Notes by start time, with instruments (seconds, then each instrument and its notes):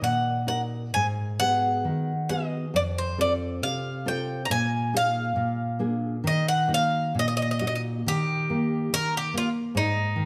Already playing: nylon-string guitar D#4 F#4 A#4
0.02 nylon-string guitar A#2, bouzouki F#5
0.47 nylon-string guitar D#4 F#4 A#4, bouzouki F#5
0.94 nylon-string guitar G#2, bouzouki G#5
1.40 nylon-string guitar B3 F#4 G#4, bouzouki F#5
1.85 nylon-string guitar D#3
2.29 nylon-string guitar B3 F#4 G#4, bouzouki D#5
2.74 nylon-string guitar F2, bouzouki D5
2.98 bouzouki C5
3.18 nylon-string guitar C4 F4 A4, bouzouki D5
3.62 nylon-string guitar C3, bouzouki F5
4.06 nylon-string guitar C4 F4 A4, bouzouki G5
4.45 bouzouki A#5
4.50 nylon-string guitar A#2, bouzouki G#5
4.93 nylon-string guitar A#3 D#4 G#4, bouzouki F5
5.36 nylon-string guitar A#2
5.79 nylon-string guitar A#3 D4 G#4
6.24 nylon-string guitar D#3, bouzouki D#5
6.48 bouzouki F#5
6.68 nylon-string guitar A#3 D#4 F#4
6.74 bouzouki F5
7.15 nylon-string guitar A#2
7.19 bouzouki D#5
7.28 bouzouki D#5
7.37 bouzouki D#5
7.42 bouzouki D#5
7.51 bouzouki D#5
7.59 nylon-string guitar A#3 D#4 F#4, bouzouki D#5
7.67 bouzouki D#5
7.75 bouzouki D#5
8.06 nylon-string guitar D#3, bouzouki G4
8.50 nylon-string guitar A#3
8.93 nylon-string guitar D#3, bouzouki A#4
9.17 bouzouki G4
9.34 nylon-string guitar A#3, bouzouki F4
9.75 nylon-string guitar G#2, bouzouki D#4
10.16 nylon-string guitar D#3